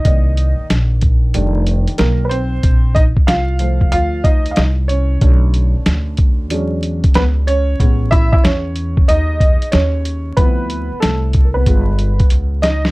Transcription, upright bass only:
0.05 0.56 C2 loud
0.59 muted upright bass stroke soft
0.70 1.31 A#1 medium
1.34 1.85 F1 loud
1.88 muted upright bass stroke soft
1.99 2.60 B1 medium
2.64 3.14 A#1 medium
3.17 muted upright bass stroke soft
3.28 3.89 C2 medium
3.93 4.54 D2 medium
4.57 5.19 C2 medium
5.22 5.72 B1 loud
5.75 muted upright bass stroke medium
5.86 6.51 D2 medium
6.51 7.01 E2 loud
7.04 muted upright bass stroke soft
7.15 7.76 C#2 medium
7.80 8.31 A1 loud
8.33 muted upright bass stroke medium
8.45 9.06 E2 loud
9.09 9.60 D#2 loud
9.63 muted upright bass stroke soft
9.74 10.35 D#2 medium
10.37 10.88 D2 loud
10.92 muted upright bass stroke soft
11.03 11.64 C2 loud
11.67 12.17 G1 loud
12.20 muted upright bass stroke soft
12.32 12.91 C#2 medium

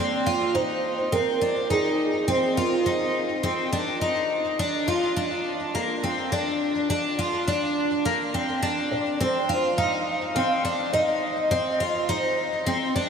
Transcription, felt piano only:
0.00 0.57 D5 medium
0.54 1.14 C5 medium
1.12 1.72 A#4 medium
1.70 2.30 G#4 medium
2.28 3.39 C5 medium
8.91 9.21 D5 medium
9.21 9.80 C5 medium
9.77 10.31 F5 medium
10.35 10.95 F5 medium
10.93 11.47 D#5 medium
11.51 12.10 D#5 medium
12.08 13.09 C5 medium

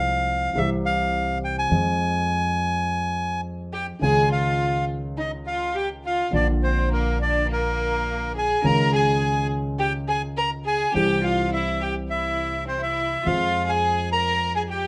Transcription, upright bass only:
0.00 0.50 C2 medium
0.56 1.65 C2 medium
1.71 3.90 F2 medium
4.02 6.21 C#2 medium
6.33 8.52 A#1 medium
8.64 10.83 C#2 medium
10.95 13.15 C2 medium
13.26 14.87 F2 medium

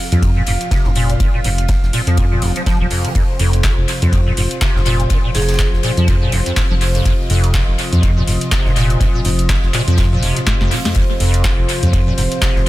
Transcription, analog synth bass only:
0.12 0.43 F2 loud
0.47 0.57 F1 medium
0.85 1.16 F1 medium
1.44 1.77 F1 loud
1.83 1.91 F1 medium
2.07 2.38 F2 loud
2.42 2.52 F1 medium
2.80 2.88 D#1 medium
3.40 3.72 F1 loud
3.78 3.86 F1 medium
4.02 4.33 F2 loud
4.37 4.48 F1 medium
4.75 5.06 F1 medium
5.35 5.67 F1 loud
5.73 5.81 F1 medium
5.97 6.28 F2 loud
6.32 6.43 F1 medium
6.70 7.01 F1 medium
7.30 7.62 F1 loud
7.68 7.76 F1 medium
7.92 8.23 F2 loud
8.27 8.38 F1 medium
8.65 8.96 F1 medium
9.25 9.58 F1 loud
9.63 9.71 F1 medium
9.88 10.18 F2 loud
10.22 10.33 F1 medium
10.61 10.69 F1 medium
11.20 11.53 F1 loud
11.58 11.66 F1 medium
11.83 12.13 F2 loud
12.18 12.28 F1 medium
12.56 12.69 F1 medium

